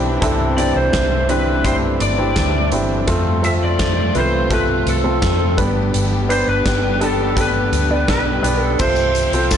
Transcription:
Already playing: fingered electric bass B1, string section E3 G3 C4 D4, grand piano C4 D4 E4 G4 A4
0.21 fingered electric bass C2, grand piano C3 C4 D4 E4 A4, string section A3, kick, closed hi-hat
0.57 grand piano C4 D4 E4 G4, lead electric guitar D5, closed hi-hat
0.76 fingered electric bass C2, lead electric guitar C5
0.93 fingered electric bass C2, kick, snare, closed hi-hat
1.29 grand piano C4 D4 E4 G4, lead electric guitar B4, closed hi-hat
1.65 grand piano C4 D4 E4 G4, lead electric guitar C5, kick, closed hi-hat
2.00 fingered electric bass G1, lead electric guitar D5, closed hi-hat
2.18 grand piano C4 D4 E4 G4
2.36 fingered electric bass D2, kick, snare, closed hi-hat
2.72 fingered electric bass G1, grand piano C4 D4 E4 G4, closed hi-hat
3.07 fingered electric bass F2, string section C3 F3 F4, grand piano A3 C4 F4 A4, kick, closed hi-hat
3.43 grand piano A3 C4 F4 A4, lead electric guitar E5, closed hi-hat
3.64 lead electric guitar D5
3.79 kick, snare, closed hi-hat
4.15 fingered electric bass C2, grand piano A3 C4 F4 B4, lead electric guitar C5, closed hi-hat
4.51 grand piano A3 C4 F4 A4, lead electric guitar B4, kick, closed hi-hat
4.86 fingered electric bass C2, lead electric guitar A4, closed hi-hat
5.04 grand piano A3 C4 F4 A4
5.22 fingered electric bass F2, kick, snare, closed hi-hat
5.57 fingered electric bass G1, grand piano G2 B3 D4 G4 B4, string section D3 G3 B3 G4, kick, closed hi-hat
5.94 fingered electric bass G1, closed hi-hat
6.29 grand piano B3 D4 G4 B4, lead electric guitar C5, closed hi-hat
6.47 fingered electric bass G1, lead electric guitar B4
6.66 fingered electric bass G1, kick, snare, closed hi-hat
7.01 grand piano B3 D4 G4 A4, lead electric guitar A4, closed hi-hat
7.37 grand piano B3 D4 G4 A4, kick, closed hi-hat
7.41 lead electric guitar B4
7.72 fingered electric bass D2, closed hi-hat
7.91 grand piano B3 D4 G4 D5
8.08 fingered electric bass B1, lead electric guitar B4, kick, snare, closed hi-hat
8.43 fingered electric bass B1, grand piano B3 D4 G4 B4, closed hi-hat
8.63 lead electric guitar A4
8.79 fingered electric bass C2, grand piano C3 C4 F4 A4 C5, string section F3 C4 F4, lead electric guitar C5, kick, crash, tambourine
8.96 tambourine
9.15 closed hi-hat, tambourine
9.32 fingered electric bass C2, grand piano C4 F4 A4 C5, closed hi-hat
9.51 lead electric guitar A4, kick, snare, closed hi-hat, tambourine

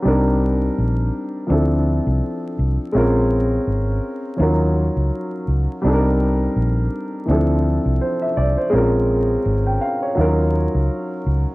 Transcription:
0.02 fingered electric bass C2, upright piano G3 C4 D4
0.06 upright piano D#4 A#4
0.78 fingered electric bass A#1
1.47 fingered electric bass D2, upright piano F3 C4 D4
1.51 upright piano E4 A4
2.07 fingered electric bass C2
2.59 fingered electric bass C2
2.92 fingered electric bass A#1, upright piano G#3 C4 C#4 F4
2.98 upright piano A#4
3.67 fingered electric bass G#1
4.36 fingered electric bass D#2, upright piano F3 C#4 D#4 F4
4.42 upright piano F#3 A#4
4.97 fingered electric bass C#2
5.48 fingered electric bass C#2
5.81 fingered electric bass C2, upright piano G3 C4 D4
5.86 upright piano D#4 A4
5.93 upright piano A#4
6.56 fingered electric bass A#1
7.26 fingered electric bass D2, upright piano E3 C4 D4
7.30 upright piano F3 E4 A4
7.86 fingered electric bass C2
8.01 upright piano C5
8.22 upright piano E5
8.37 fingered electric bass C2, upright piano D5
8.57 upright piano C5
8.70 fingered electric bass A#1, upright piano G#3 C4 C#4
8.74 upright piano F4 A#4
9.46 fingered electric bass G#1
9.66 upright piano G5
9.81 upright piano F5
10.02 upright piano C#5
10.15 fingered electric bass D#2, upright piano F#3 C#4 D#4
10.19 upright piano F4 A#4
10.75 fingered electric bass C#2
11.26 fingered electric bass C#2

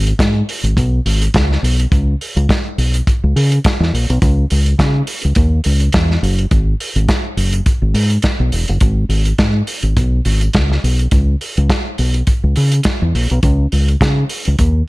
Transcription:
Already playing: fingered electric bass G#1
0.07 closed hi-hat
0.19 fingered electric bass G#2, kick, snare, closed hi-hat
0.49 open hi-hat
0.63 fingered electric bass G#1, closed hi-hat
0.77 fingered electric bass B1, kick, closed hi-hat
1.05 fingered electric bass G#1, open hi-hat
1.22 closed hi-hat
1.34 fingered electric bass C#2, kick, snare, closed hi-hat
1.52 snare
1.63 fingered electric bass B1, open hi-hat
1.80 closed hi-hat
1.91 fingered electric bass C#2, kick, closed hi-hat
2.21 open hi-hat
2.36 fingered electric bass C#2, closed hi-hat
2.49 kick, snare, closed hi-hat
2.78 fingered electric bass B1, open hi-hat
2.94 closed hi-hat
3.07 kick, closed hi-hat
3.24 fingered electric bass C#2
3.36 fingered electric bass C#3, open hi-hat
3.52 closed hi-hat
3.64 kick, snare, closed hi-hat
3.80 fingered electric bass E2, snare
3.93 fingered electric bass A#1, open hi-hat
4.10 fingered electric bass B1, closed hi-hat
4.22 fingered electric bass C#2, kick, closed hi-hat
4.50 fingered electric bass C#2, open hi-hat
4.66 closed hi-hat
4.79 fingered electric bass C#3, kick, snare, closed hi-hat
5.07 open hi-hat
5.22 fingered electric bass C#2, closed hi-hat
5.35 fingered electric bass D#2, kick, closed hi-hat
5.64 fingered electric bass C#2, open hi-hat
5.80 closed hi-hat
5.92 fingered electric bass E2, kick, snare, closed hi-hat
6.11 snare
6.22 fingered electric bass F#1, open hi-hat
6.39 closed hi-hat
6.51 fingered electric bass G#1, kick, closed hi-hat
6.80 open hi-hat
6.96 fingered electric bass G#1, closed hi-hat
7.08 kick, snare, closed hi-hat
7.37 fingered electric bass F#1, open hi-hat
7.52 closed hi-hat
7.66 kick, closed hi-hat
7.82 fingered electric bass G#1
7.94 fingered electric bass G#2, open hi-hat
8.10 closed hi-hat
8.22 kick, snare, closed hi-hat
8.40 fingered electric bass B1
8.52 fingered electric bass E1, open hi-hat
8.68 fingered electric bass F#1, closed hi-hat
8.81 fingered electric bass G#1, kick, closed hi-hat
9.09 fingered electric bass G#1, open hi-hat
9.25 closed hi-hat
9.38 fingered electric bass G#2, kick, snare, closed hi-hat
9.67 open hi-hat
9.83 fingered electric bass G#1, closed hi-hat
9.97 fingered electric bass B1, kick, closed hi-hat
10.25 fingered electric bass G#1, open hi-hat
10.41 closed hi-hat
10.53 fingered electric bass C#2, kick, snare, closed hi-hat
10.72 snare
10.84 fingered electric bass B1, open hi-hat
10.99 closed hi-hat
11.11 fingered electric bass C#2, kick, closed hi-hat
11.41 open hi-hat
11.57 fingered electric bass C#2, closed hi-hat
11.70 kick, snare, closed hi-hat
11.98 fingered electric bass B1, open hi-hat
12.14 closed hi-hat
12.27 kick, closed hi-hat
12.44 fingered electric bass C#2
12.56 fingered electric bass C#3, open hi-hat
12.72 closed hi-hat
12.83 kick, snare, closed hi-hat
13.02 fingered electric bass E2
13.14 fingered electric bass A#1, open hi-hat
13.30 fingered electric bass B1, closed hi-hat
13.43 fingered electric bass C#2, kick, closed hi-hat
13.72 fingered electric bass C#2, open hi-hat
13.88 closed hi-hat
14.01 fingered electric bass C#3, kick, snare, closed hi-hat
14.29 open hi-hat
14.45 fingered electric bass C#2, closed hi-hat
14.59 fingered electric bass D#2, kick, closed hi-hat

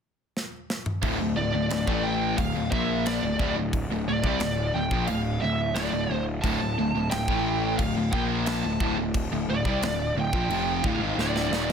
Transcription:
0.37 snare
0.70 snare
0.86 mid tom
1.02 picked electric bass D1, distorted electric guitar D2 A2, kick, crash
1.20 picked electric bass D1, distorted electric guitar D2 A2
1.36 picked electric bass D1, distorted electric guitar D2 A2, lead electric guitar D5
1.54 picked electric bass D1, distorted electric guitar D2 A2
1.70 picked electric bass D1, distorted electric guitar D2 A2, snare, crash
1.87 picked electric bass A1, distorted electric guitar A2 E3 A3, kick
2.03 lead electric guitar G5
2.37 picked electric bass D1, distorted electric guitar D2 A2, lead electric guitar F5, kick, crash
2.55 picked electric bass D1, distorted electric guitar D2 A2
2.71 picked electric bass A#1, distorted electric guitar A#2 F3 A#3, lead electric guitar E5, kick
3.06 lead electric guitar D5, snare, crash
3.22 picked electric bass D1, distorted electric guitar D2 A2
3.39 picked electric bass D1, distorted electric guitar D2 A2, kick
3.56 picked electric bass D1, distorted electric guitar D2 A2
3.73 kick, crash
3.89 picked electric bass D1, distorted electric guitar D2 A2
4.08 picked electric bass D1, distorted electric guitar D2 A2, lead electric guitar D5
4.23 picked electric bass C2, distorted electric guitar C3 G3, kick
4.40 picked electric bass D1, distorted electric guitar D2 A2, snare, crash
4.74 picked electric bass D1, distorted electric guitar D2 A2, lead electric guitar G5
4.91 picked electric bass A#1, distorted electric guitar A#2 F3, kick
5.07 picked electric bass D1, distorted electric guitar D2 A2, lead electric guitar F5, crash
5.41 picked electric bass D1, distorted electric guitar D2 A2, lead electric guitar E5
5.74 picked electric bass D1, distorted electric guitar D2 A2, lead electric guitar D5, snare, crash
5.92 picked electric bass D1, distorted electric guitar D2 A2
6.09 picked electric bass D1, distorted electric guitar D2 A2
6.42 picked electric bass D1, distorted electric guitar D2 A2, lead electric guitar A5, kick, crash
6.60 picked electric bass D1, distorted electric guitar D2 A2
6.78 picked electric bass D1, distorted electric guitar D2 A2
6.95 picked electric bass D1, distorted electric guitar D2 A2
7.11 picked electric bass D1, distorted electric guitar D2 A2, lead electric guitar G5, snare, crash
7.28 picked electric bass A1, distorted electric guitar A2 E3 A3, kick
7.78 picked electric bass D1, distorted electric guitar D2 A2, lead electric guitar F5, kick, crash
7.96 picked electric bass D1, distorted electric guitar D2 A2
8.12 picked electric bass A#1, distorted electric guitar A#2 F3 A#3, lead electric guitar G5, kick
8.46 lead electric guitar A5, snare, crash
8.64 picked electric bass D1, distorted electric guitar D2 A2
8.80 picked electric bass D1, distorted electric guitar D2 A2, kick
8.96 picked electric bass D1, distorted electric guitar D2 A2
9.14 kick, crash
9.31 picked electric bass D1, distorted electric guitar D2 A2
9.48 picked electric bass D1, distorted electric guitar D2 A2, lead electric guitar D5
9.65 picked electric bass C2, distorted electric guitar C3 G3, kick
9.82 picked electric bass D1, distorted electric guitar D2 A2, snare, crash
10.15 picked electric bass D1, distorted electric guitar D2 A2
10.20 lead electric guitar G5
10.33 picked electric bass A#1, distorted electric guitar A#2 F3, kick
10.49 picked electric bass F1, distorted electric guitar F2 C3 F3, crash
10.84 picked electric bass D1, distorted electric guitar D2 A2, lead electric guitar F5, kick
10.99 picked electric bass G#1, distorted electric guitar G#2
11.03 distorted electric guitar D#3
11.16 picked electric bass D1, distorted electric guitar D2 A2 D3, snare
11.20 lead electric guitar D5
11.36 snare
11.51 picked electric bass D#1, distorted electric guitar D#2 A#2 D#3, snare

